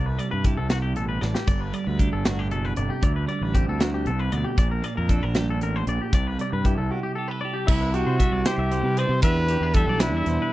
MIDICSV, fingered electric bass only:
0, 0, Header, 1, 2, 480
1, 0, Start_track
1, 0, Tempo, 516351
1, 1377, Time_signature, 6, 3, 24, 8
1, 9788, End_track
2, 0, Start_track
2, 0, Title_t, "Fingered electric bass"
2, 0, Program_c, 0, 33
2, 0, Note_on_c, 0, 36, 81
2, 148, Note_off_c, 0, 36, 0
2, 305, Note_on_c, 0, 43, 76
2, 510, Note_off_c, 0, 43, 0
2, 539, Note_on_c, 0, 36, 72
2, 901, Note_off_c, 0, 36, 0
2, 901, Note_on_c, 0, 33, 70
2, 1107, Note_off_c, 0, 33, 0
2, 1135, Note_on_c, 0, 33, 79
2, 1240, Note_off_c, 0, 33, 0
2, 1373, Note_on_c, 0, 31, 79
2, 1582, Note_off_c, 0, 31, 0
2, 1738, Note_on_c, 0, 38, 78
2, 1945, Note_off_c, 0, 38, 0
2, 1980, Note_on_c, 0, 31, 69
2, 2347, Note_off_c, 0, 31, 0
2, 2347, Note_on_c, 0, 30, 73
2, 2550, Note_off_c, 0, 30, 0
2, 2579, Note_on_c, 0, 31, 74
2, 2682, Note_off_c, 0, 31, 0
2, 2818, Note_on_c, 0, 38, 78
2, 3025, Note_off_c, 0, 38, 0
2, 3173, Note_on_c, 0, 33, 80
2, 3382, Note_off_c, 0, 33, 0
2, 3424, Note_on_c, 0, 38, 73
2, 3770, Note_on_c, 0, 36, 71
2, 3784, Note_off_c, 0, 38, 0
2, 3981, Note_off_c, 0, 36, 0
2, 4020, Note_on_c, 0, 38, 83
2, 4123, Note_off_c, 0, 38, 0
2, 4258, Note_on_c, 0, 34, 87
2, 4466, Note_off_c, 0, 34, 0
2, 4626, Note_on_c, 0, 41, 84
2, 4830, Note_off_c, 0, 41, 0
2, 4865, Note_on_c, 0, 34, 74
2, 5216, Note_off_c, 0, 34, 0
2, 5216, Note_on_c, 0, 33, 74
2, 5425, Note_off_c, 0, 33, 0
2, 5456, Note_on_c, 0, 34, 86
2, 5561, Note_off_c, 0, 34, 0
2, 5696, Note_on_c, 0, 36, 78
2, 5905, Note_off_c, 0, 36, 0
2, 6068, Note_on_c, 0, 43, 76
2, 6272, Note_off_c, 0, 43, 0
2, 6309, Note_on_c, 0, 36, 66
2, 6408, Note_off_c, 0, 36, 0
2, 7143, Note_on_c, 0, 36, 90
2, 7453, Note_off_c, 0, 36, 0
2, 7497, Note_on_c, 0, 48, 82
2, 7602, Note_off_c, 0, 48, 0
2, 7732, Note_on_c, 0, 36, 74
2, 7839, Note_off_c, 0, 36, 0
2, 7972, Note_on_c, 0, 36, 84
2, 8183, Note_off_c, 0, 36, 0
2, 8206, Note_on_c, 0, 48, 75
2, 8420, Note_off_c, 0, 48, 0
2, 8449, Note_on_c, 0, 48, 73
2, 8557, Note_off_c, 0, 48, 0
2, 8580, Note_on_c, 0, 40, 104
2, 8892, Note_off_c, 0, 40, 0
2, 8929, Note_on_c, 0, 40, 85
2, 9142, Note_off_c, 0, 40, 0
2, 9172, Note_on_c, 0, 35, 79
2, 9417, Note_off_c, 0, 35, 0
2, 9417, Note_on_c, 0, 40, 77
2, 9522, Note_off_c, 0, 40, 0
2, 9540, Note_on_c, 0, 40, 77
2, 9644, Note_off_c, 0, 40, 0
2, 9788, End_track
0, 0, End_of_file